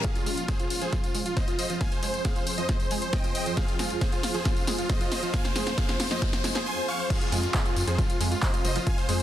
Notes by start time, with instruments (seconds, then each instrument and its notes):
0.04 ambient pad F2 F3 C4 G#4 C5, synth pluck F3, supersaw synth G#4 F5, kick, snare, closed hi-hat, tambourine, riser
0.15 supersaw synth F4, closed hi-hat, tambourine
0.26 synth pluck G#3, supersaw synth F4, open hi-hat, tambourine
0.37 supersaw synth F4, closed hi-hat, tambourine
0.48 synth pluck C4, supersaw synth G#4 C5, kick, snare, closed hi-hat, tambourine
0.59 synth pluck F4, supersaw synth F4, closed hi-hat, tambourine
0.70 supersaw synth F4, open hi-hat, tambourine
0.81 synth pluck F3, supersaw synth G#4 C5, closed hi-hat, tambourine
0.93 synth pluck F3, supersaw synth F4, kick, snare, closed hi-hat, tambourine
1.04 supersaw synth F4, closed hi-hat, tambourine
1.15 synth pluck G#3, open hi-hat, tambourine
1.26 supersaw synth F4, closed hi-hat, tambourine
1.37 synth pluck C4, supersaw synth C5 D#5, kick, snare, closed hi-hat, tambourine
1.48 synth pluck F4, supersaw synth F4, closed hi-hat, tambourine
1.59 supersaw synth C5 D#5, open hi-hat, tambourine
1.70 synth pluck F3, supersaw synth F4, closed hi-hat, tambourine
1.81 synth pluck F3, supersaw synth F5 G#5, kick, snare, closed hi-hat, tambourine
1.92 supersaw synth C5, closed hi-hat, tambourine
2.03 synth pluck G#3, supersaw synth C5, open hi-hat, tambourine
2.14 supersaw synth C5, closed hi-hat, tambourine
2.25 synth pluck C4, supersaw synth G#4 F5, kick, snare, closed hi-hat
2.36 synth pluck F4, supersaw synth C5, closed hi-hat, tambourine
2.47 supersaw synth C5, open hi-hat, tambourine
2.58 synth pluck F3, supersaw synth C5 D#5, closed hi-hat, tambourine
2.69 synth pluck F3, supersaw synth C5, kick, snare, closed hi-hat, tambourine
2.80 supersaw synth C5, closed hi-hat, tambourine
2.91 synth pluck G#3, open hi-hat, tambourine
3.02 supersaw synth C5, closed hi-hat, tambourine
3.13 synth pluck C4, supersaw synth D#5 G5, kick, snare, closed hi-hat, tambourine
3.24 synth pluck F4, supersaw synth C5, closed hi-hat, tambourine
3.35 supersaw synth D#5 G5, open hi-hat, tambourine
3.46 synth pluck F3, supersaw synth C5, closed hi-hat, tambourine
3.57 synth pluck F3, supersaw synth G#4 F5, kick, snare, closed hi-hat
3.68 supersaw synth F4, closed hi-hat, tambourine
3.79 synth pluck G#3, supersaw synth F4, snare, open hi-hat, tambourine
3.90 supersaw synth F4, closed hi-hat, tambourine
4.01 synth pluck C4, supersaw synth G#4 C5, kick, snare, closed hi-hat, tambourine
4.12 supersaw synth F4, synth pluck F4, closed hi-hat, tambourine
4.23 supersaw synth F4, snare, open hi-hat, tambourine
4.34 synth pluck F3, supersaw synth G#4 C5, closed hi-hat, tambourine
4.45 synth pluck F3, supersaw synth F4, kick, snare, closed hi-hat, tambourine
4.56 supersaw synth F4, closed hi-hat, tambourine
4.67 synth pluck G#3, snare, open hi-hat, tambourine
4.78 supersaw synth F4, closed hi-hat, tambourine
4.89 synth pluck C4, supersaw synth C5 D#5, kick, snare, closed hi-hat, tambourine
5.01 supersaw synth F4, synth pluck F4, closed hi-hat, tambourine
5.12 supersaw synth C5 D#5, snare, open hi-hat, tambourine
5.23 synth pluck F3, supersaw synth F4, closed hi-hat, tambourine
5.34 synth pluck F3, supersaw synth F5 G#5, kick, snare, closed hi-hat, tambourine
5.45 supersaw synth C5, snare, closed hi-hat, tambourine
5.56 synth pluck G#3, supersaw synth C5, snare, open hi-hat, tambourine
5.67 supersaw synth C5, snare, closed hi-hat, tambourine
5.78 synth pluck C4, supersaw synth G#4 F5, kick, snare, closed hi-hat, tambourine
5.89 synth pluck F4, supersaw synth C5, snare, closed hi-hat, tambourine
6.00 supersaw synth C5, snare, open hi-hat, tambourine
6.11 synth pluck F3, supersaw synth C5 D#5, snare, closed hi-hat, tambourine
6.22 synth pluck F3, supersaw synth C5, kick, snare, closed hi-hat, swell
6.33 supersaw synth C5, snare, closed hi-hat, tambourine
6.44 synth pluck G#3, snare, open hi-hat, tambourine
6.55 synth pluck G#4, supersaw synth C5, snare, closed hi-hat, tambourine
6.66 supersaw synth G#5 C6
6.77 supersaw synth C5
6.88 supersaw synth F5 C#6
6.99 supersaw synth C5
7.10 synth pluck F3, ambient pad G#3 C4 F4, supersaw synth G#4 F5, kick, closed hi-hat, crash, tambourine, downlifter
7.21 supersaw synth F4, closed hi-hat, tambourine
7.32 analog synth bass F2, synth pluck G#3, supersaw synth F4, open hi-hat, tambourine
7.43 supersaw synth F4, closed hi-hat, tambourine
7.54 synth pluck C4, supersaw synth G#4 C5, kick, clap, closed hi-hat, tambourine
7.65 supersaw synth F4, synth pluck F4, closed hi-hat, tambourine
7.76 analog synth bass F2, supersaw synth F4, open hi-hat, tambourine
7.87 analog synth bass F2, synth pluck F3, supersaw synth G#4 C5, closed hi-hat, tambourine
7.98 synth pluck F3, supersaw synth F4, kick, closed hi-hat, tambourine
8.09 supersaw synth F4, closed hi-hat, tambourine
8.20 analog synth bass F2, synth pluck G#3, open hi-hat, tambourine
8.31 supersaw synth F4, closed hi-hat, tambourine
8.43 synth pluck C4, supersaw synth C5 D#5, kick, clap, closed hi-hat
8.53 supersaw synth F4, synth pluck F4, closed hi-hat, tambourine
8.65 analog synth bass F1, supersaw synth C5 D#5, open hi-hat, tambourine
8.76 synth pluck F3, supersaw synth F4, closed hi-hat, tambourine
8.87 synth pluck F3, supersaw synth F5 G#5, kick, closed hi-hat
8.98 supersaw synth C5, closed hi-hat, tambourine
9.09 analog synth bass F2, synth pluck G#3, supersaw synth C5, open hi-hat, tambourine